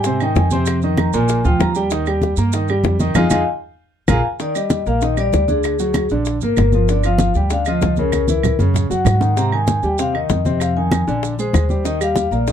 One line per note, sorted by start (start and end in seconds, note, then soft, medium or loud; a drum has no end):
0.00 0.33 G#2 medium
0.00 0.19 G#5 loud
0.00 maracas medium
0.04 0.18 C3 medium
0.04 0.18 C4 medium
0.04 0.19 C5 medium
0.04 high bongo medium
0.04 high conga soft
0.20 0.47 D#3 medium
0.20 0.47 D#4 medium
0.20 0.47 D#5 medium
0.20 0.36 G5 medium
0.20 high conga soft
0.20 claves medium
0.20 maracas soft
0.36 1.08 F2 medium
0.36 0.51 G#5 loud
0.36 high bongo medium
0.36 low bongo medium
0.36 high conga medium
0.36 maracas soft
0.51 0.77 C3 medium
0.51 0.78 C4 medium
0.51 0.78 C5 medium
0.51 high bongo soft
0.51 high conga medium
0.51 maracas medium
0.66 high bongo medium
0.66 high conga soft
0.66 claves medium
0.66 maracas medium
0.82 1.09 D#3 medium
0.82 1.09 D#4 medium
0.82 1.09 D#5 medium
0.82 high conga soft
0.82 maracas soft
0.97 1.13 A#5 medium
0.97 high bongo medium
0.97 high conga loud
0.97 claves medium
0.97 maracas soft
1.13 1.43 A#1 loud
1.13 1.39 A#2 medium
1.13 1.39 A#3 medium
1.13 1.40 A#4 medium
1.13 1.43 G#5 medium
1.13 high bongo soft
1.13 high conga soft
1.13 maracas medium
1.28 high bongo medium
1.28 high conga soft
1.28 maracas medium
1.44 1.59 D2 medium
1.44 1.70 F3 medium
1.44 1.70 F4 medium
1.44 1.70 F5 medium
1.44 1.60 G5 medium
1.44 high bongo soft
1.44 high conga soft
1.44 maracas soft
1.60 2.32 D#2 loud
1.60 1.70 A#5 loud
1.60 high bongo medium
1.60 low bongo medium
1.60 high conga medium
1.60 claves medium
1.60 maracas soft
1.75 1.89 G3 medium
1.75 1.89 G4 medium
1.75 1.89 G5 medium
1.75 high bongo soft
1.75 maracas medium
1.91 2.04 D#3 medium
1.91 2.04 D#4 medium
1.91 2.04 D#5 medium
1.91 high bongo medium
1.91 high conga soft
1.91 maracas medium
2.06 2.33 G3 medium
2.06 2.33 G4 medium
2.06 2.33 G5 medium
2.06 high bongo soft
2.06 high conga soft
2.06 claves medium
2.06 maracas soft
2.22 high bongo medium
2.22 high conga medium
2.22 maracas soft
2.37 2.81 G2 medium
2.37 2.51 A#3 medium
2.37 2.51 A#4 medium
2.37 2.51 A#5 medium
2.37 high bongo soft
2.37 high conga soft
2.37 maracas medium
2.53 2.67 D#3 medium
2.53 2.67 D#4 medium
2.53 2.67 D#5 medium
2.53 high bongo medium
2.53 high conga soft
2.53 maracas medium
2.68 2.95 G3 medium
2.68 2.95 G4 medium
2.68 2.95 G5 medium
2.68 high conga soft
2.68 claves medium
2.68 maracas soft
2.84 3.13 F2 loud
2.84 high bongo medium
2.84 low bongo loud
2.84 high conga medium
2.84 maracas soft
3.00 3.13 D#3 medium
3.00 3.13 D#4 medium
3.00 3.13 D#5 medium
3.00 high bongo soft
3.00 high conga medium
3.00 maracas medium
3.15 3.27 F2 loud
3.15 3.25 D#4 loud
3.15 3.25 F4 loud
3.15 3.25 G#4 loud
3.15 3.25 D#5 loud
3.15 3.26 F5 medium
3.15 3.25 G#5 loud
3.15 low bongo loud
3.15 high conga medium
3.15 claves loud
3.15 maracas loud
3.30 3.42 F2 medium
3.30 3.41 D#4 medium
3.30 3.41 F4 loud
3.30 3.41 G#4 loud
3.30 3.41 D#5 loud
3.30 3.41 F5 loud
3.30 3.41 G#5 loud
3.30 low bongo loud
3.30 high conga medium
3.30 claves medium
3.30 maracas loud
4.08 4.20 A#1 loud
4.08 4.18 F4 loud
4.08 4.19 G#4 medium
4.08 4.18 A#4 loud
4.08 4.19 F5 loud
4.08 4.19 G#5 loud
4.08 4.19 A#5 loud
4.08 low bongo loud
4.08 high conga loud
4.08 claves loud
4.08 maracas loud
4.40 4.52 D#3 medium
4.40 4.53 D#4 medium
4.40 4.48 D5 medium
4.40 high bongo medium
4.40 high conga soft
4.40 maracas medium
4.55 4.81 G3 medium
4.55 4.81 G4 medium
4.55 4.85 D#5 loud
4.55 high conga soft
4.55 claves medium
4.55 maracas medium
4.70 high bongo medium
4.70 high conga loud
4.70 maracas medium
4.86 5.30 A#1 medium
4.86 4.99 A#3 medium
4.86 5.00 A#4 medium
4.86 5.02 F5 medium
4.86 high bongo soft
4.86 high conga soft
4.86 maracas soft
5.01 5.15 D#3 medium
5.01 5.15 D#4 medium
5.01 5.19 D#5 loud
5.01 high bongo medium
5.01 high conga soft
5.01 maracas medium
5.17 5.43 G3 medium
5.17 5.43 G4 medium
5.17 5.51 D5 medium
5.17 high bongo soft
5.17 high conga soft
5.17 claves medium
5.17 maracas medium
5.33 6.05 D2 medium
5.33 high bongo medium
5.33 low bongo medium
5.33 high conga medium
5.33 maracas medium
5.48 5.74 D3 medium
5.48 5.74 D4 medium
5.48 6.07 G#4 medium
5.48 high bongo soft
5.48 high conga medium
5.48 maracas soft
5.63 high bongo medium
5.63 high conga soft
5.63 claves medium
5.63 maracas medium
5.79 6.05 F#3 medium
5.79 6.05 F#4 medium
5.79 high conga soft
5.79 maracas medium
5.94 high bongo medium
5.94 high conga loud
5.94 claves medium
5.94 maracas medium
6.09 6.40 A#1 medium
6.09 6.37 D3 medium
6.09 6.37 D4 medium
6.09 high bongo soft
6.09 high conga soft
6.09 maracas soft
6.25 high bongo medium
6.25 high conga soft
6.25 maracas medium
6.41 6.56 G#1 medium
6.41 6.68 A#3 medium
6.41 6.68 A#4 medium
6.41 6.91 A#4 medium
6.41 high bongo soft
6.41 high conga soft
6.41 maracas medium
6.57 7.30 G1 loud
6.57 high bongo medium
6.57 low bongo medium
6.57 high conga medium
6.57 claves medium
6.57 maracas medium
6.72 6.86 F3 medium
6.72 6.86 F4 medium
6.72 high conga medium
6.72 maracas soft
6.89 7.02 D3 medium
6.89 7.02 D4 medium
6.89 7.03 D5 medium
6.89 high bongo medium
6.89 high conga soft
6.89 maracas medium
7.03 7.30 F3 medium
7.03 7.30 F4 medium
7.03 7.34 F5 loud
7.03 high conga soft
7.03 claves medium
7.03 maracas medium
7.18 high bongo medium
7.18 high conga loud
7.18 maracas medium
7.34 7.78 D2 medium
7.34 7.49 G3 medium
7.34 7.49 G4 medium
7.34 7.50 G5 medium
7.34 high bongo soft
7.34 high conga soft
7.34 maracas soft
7.50 7.64 D3 medium
7.50 7.64 D4 medium
7.50 7.66 F5 loud
7.50 high bongo medium
7.50 high conga soft
7.50 maracas medium
7.65 7.92 F3 medium
7.65 7.93 F4 medium
7.65 7.95 D#5 loud
7.65 high bongo soft
7.65 high conga soft
7.65 claves medium
7.65 maracas medium
7.82 8.54 C#2 medium
7.82 high bongo medium
7.82 low bongo medium
7.82 high conga medium
7.82 maracas medium
7.96 8.23 C#3 medium
7.96 8.24 C#4 medium
7.96 8.56 A#4 medium
7.96 high bongo soft
7.96 high conga medium
7.96 maracas soft
8.12 high bongo medium
8.12 high conga medium
8.12 claves medium
8.12 maracas medium
8.28 8.54 E3 medium
8.28 8.54 E4 medium
8.28 high conga medium
8.28 maracas medium
8.43 high bongo medium
8.43 low conga medium
8.43 claves medium
8.43 maracas medium
8.59 8.88 F#2 medium
8.59 8.85 C#3 medium
8.59 8.85 C#4 medium
8.59 high bongo soft
8.59 high conga medium
8.59 maracas soft
8.74 high bongo medium
8.74 low conga medium
8.74 maracas medium
8.90 9.05 F#2 medium
8.90 9.15 F#3 medium
8.90 9.16 F#4 medium
8.90 9.38 F#5 loud
8.90 high bongo soft
8.90 maracas medium
9.05 9.78 G#2 medium
9.05 high bongo medium
9.05 low bongo loud
9.05 low conga medium
9.05 claves medium
9.05 maracas medium
9.20 9.33 D#3 medium
9.20 9.34 D#4 medium
9.20 low conga medium
9.20 maracas soft
9.36 9.49 C3 medium
9.36 9.50 C4 medium
9.36 9.53 A#5 loud
9.36 high bongo medium
9.36 high conga soft
9.36 maracas medium
9.52 9.78 D#3 medium
9.52 9.78 D#4 medium
9.52 9.85 G#5 loud
9.52 high conga soft
9.52 claves medium
9.67 high bongo medium
9.67 high conga loud
9.67 maracas medium
9.83 10.26 D#2 medium
9.83 9.96 G3 medium
9.83 9.96 G4 medium
9.83 9.92 G5 medium
9.83 high bongo soft
9.83 high conga soft
9.83 maracas soft
9.98 10.11 C3 medium
9.98 10.12 C4 medium
9.98 10.14 F5 loud
9.98 high bongo medium
9.98 high conga soft
9.98 maracas medium
10.13 10.39 D#3 medium
10.13 10.39 D#4 medium
10.13 10.58 D#5 medium
10.13 high bongo soft
10.13 high conga soft
10.13 claves medium
10.30 11.02 F2 loud
10.30 high bongo medium
10.30 low bongo medium
10.30 high conga medium
10.30 maracas medium
10.45 10.71 C3 medium
10.45 10.71 C4 medium
10.45 high bongo soft
10.45 high conga medium
10.45 maracas soft
10.60 10.77 F5 medium
10.60 high bongo medium
10.60 high conga soft
10.60 claves medium
10.60 maracas medium
10.76 11.02 D#3 medium
10.76 11.02 D#4 medium
10.76 11.20 G#5 loud
10.76 high conga soft
10.91 high bongo medium
10.91 high conga loud
10.91 claves medium
10.91 maracas medium
11.07 11.51 A#1 medium
11.07 11.33 D3 medium
11.07 11.33 D4 medium
11.07 high bongo soft
11.07 high conga soft
11.07 maracas soft
11.23 high bongo medium
11.23 high conga soft
11.23 maracas medium
11.38 11.64 G#3 medium
11.38 11.65 G#4 medium
11.38 11.82 C5 medium
11.38 high bongo soft
11.38 high conga soft
11.38 maracas medium
11.53 12.26 D#2 loud
11.53 high bongo medium
11.53 low bongo medium
11.53 high conga medium
11.53 claves medium
11.53 maracas medium
11.69 11.82 G3 medium
11.69 11.82 G4 medium
11.69 high conga medium
11.69 maracas soft
11.85 11.97 D#3 medium
11.85 11.98 D#4 medium
11.85 11.93 D#5 medium
11.85 high bongo medium
11.85 high conga soft
11.85 maracas medium
12.01 12.26 G3 medium
12.01 12.26 G4 medium
12.01 12.33 F5 loud
12.01 high conga soft
12.01 claves medium
12.01 maracas medium
12.16 high bongo medium
12.16 high conga loud
12.16 maracas medium
12.31 12.52 A#1 medium
12.31 12.44 A#3 medium
12.31 12.45 A#4 medium
12.31 12.48 D5 medium
12.31 high bongo soft
12.31 high conga soft
12.31 maracas soft
12.47 12.52 D#3 medium
12.47 12.52 D#4 medium
12.47 12.52 D#5 medium
12.47 high bongo medium
12.47 high conga soft
12.47 maracas medium